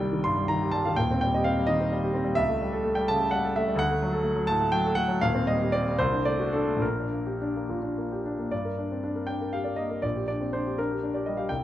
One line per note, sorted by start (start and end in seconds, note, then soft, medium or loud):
0.00 0.94 C2 medium
0.00 0.13 D#3 soft
0.00 0.37 G3 medium
0.00 0.61 G4 soft
0.00 0.24 G5 loud
0.13 0.32 D#3 soft
0.24 0.45 G2 medium
0.24 0.49 C6 loud
0.37 0.56 G3 soft
0.48 0.69 D#3 medium
0.48 0.73 A#5 medium
0.61 0.81 G4 soft
0.71 0.93 G3 medium
0.71 0.84 A5 loud
0.85 0.98 D#3 medium
0.85 0.97 F5 medium
0.96 2.33 D#1 medium
0.96 2.33 D#2 medium
0.96 1.20 G5 medium
1.11 1.30 C4 medium
1.21 1.41 G3 medium
1.21 1.33 G5 medium
1.34 1.53 G4 medium
1.34 1.46 D#5 medium
1.44 1.63 C4 medium
1.44 1.68 F5 medium
1.57 1.75 G3 soft
1.67 1.86 D#3 medium
1.67 2.36 D#5 medium
1.80 1.98 C4 medium
1.92 2.10 G3 medium
2.04 2.21 G4 medium
2.14 2.32 C4 medium
2.24 2.36 G3 medium
2.35 3.74 C#2 medium
2.35 2.96 E5 loud
2.49 2.68 A3 medium
2.61 2.81 G3 medium
2.73 2.92 A4 medium
2.84 3.04 A3 medium
2.95 3.15 G3 medium
2.95 3.08 G5 medium
3.08 3.27 C#3 medium
3.08 3.32 A5 loud
3.21 3.39 A3 medium
3.31 3.50 G3 medium
3.31 3.55 F#5 medium
3.45 3.63 A4 medium
3.56 3.75 A3 medium
3.56 3.78 E5 medium
3.68 3.79 G3 medium
3.76 5.16 D2 medium
3.76 4.49 F#5 loud
3.91 4.08 A3 medium
4.02 4.20 F#3 medium
4.13 4.32 A4 medium
4.23 4.43 A3 medium
4.36 4.55 F#3 medium
4.47 4.68 A2 medium
4.47 4.72 A5 loud
4.60 4.80 A3 medium
4.72 4.92 F#3 medium
4.72 4.96 G5 loud
4.85 5.04 A4 medium
4.95 5.16 A3 medium
4.95 5.21 F#5 loud
5.08 5.21 F#3 medium
5.21 5.97 D#1 medium
5.21 5.97 D#2 medium
5.21 5.47 F5 loud
5.35 5.55 C4 medium
5.47 5.68 G3 medium
5.47 5.73 D#5 medium
5.60 5.81 G4 medium
5.72 5.94 C4 medium
5.72 5.99 D5 medium
5.87 6.00 G3 medium
5.99 6.80 C2 medium
5.99 6.26 C5 loud
6.12 6.34 D4 soft
6.25 6.48 A3 medium
6.25 6.54 D5 medium
6.39 6.62 F#4 soft
6.53 6.77 D4 medium
6.53 6.82 A4 medium
6.68 6.83 A3 soft
6.76 8.45 A#1 medium
6.82 7.68 A#4 medium
6.99 7.21 D4 soft
7.12 7.35 A#3 soft
7.26 7.49 G4 soft
7.42 7.64 D4 soft
7.56 7.78 A#3 soft
7.69 7.91 A#2 soft
7.82 8.05 D4 soft
7.98 8.20 A#3 soft
8.12 8.34 G4 soft
8.26 8.47 D4 soft
8.39 8.52 A#3 soft
8.51 9.99 G2 medium
8.51 9.27 D5 medium
8.65 8.85 A#4 soft
8.78 8.98 D4 soft
8.91 9.03 C4 soft
9.04 9.23 D4 soft
9.16 9.36 A#4 soft
9.27 9.48 D4 soft
9.27 9.52 G5 medium
9.41 9.61 A#4 soft
9.53 9.73 G4 soft
9.53 9.65 F5 medium
9.64 9.85 A#4 soft
9.64 9.77 D5 soft
9.76 9.98 A#3 soft
9.76 10.02 D#5 medium
9.90 10.03 A#4 soft
10.02 11.45 A#1 soft
10.02 10.26 D5 medium
10.16 10.36 G4 soft
10.28 10.49 D4 soft
10.28 10.53 D5 medium
10.41 10.53 C4 soft
10.53 10.74 D4 soft
10.53 10.78 C5 medium
10.67 10.86 G4 soft
10.78 10.98 D4 soft
10.78 11.14 A#4 medium
10.91 11.10 G4 soft
11.03 11.22 D4 soft
11.14 11.33 G4 soft
11.14 11.26 D5 medium
11.26 11.45 G3 soft
11.26 11.38 D#5 medium
11.37 11.50 G4 soft
11.37 11.49 F5 medium
11.49 11.64 C2 soft
11.49 11.64 G5 medium